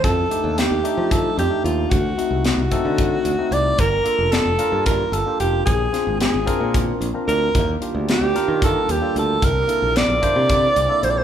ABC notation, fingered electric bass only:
X:1
M:7/8
L:1/16
Q:1/4=112
K:Fmix
V:1 name="Fingered electric bass" clef=bass
F,,2 z E,,2 E,, z F,3 F,, z E,,2 | D,,2 z C,,2 C,, z D,3 D,, z C,,2 | G,,,2 z F,,,2 F,,, z G,,3 G,,, z F,,,2 | B,,,2 z _A,,,2 A,,, z B,,3 B,,, z D,,2 |
E,,2 z D,,2 D,, z E,3 E,, z D,,2 | C,,2 z B,,,2 B,,, z C,3 C,, z B,,,2 |]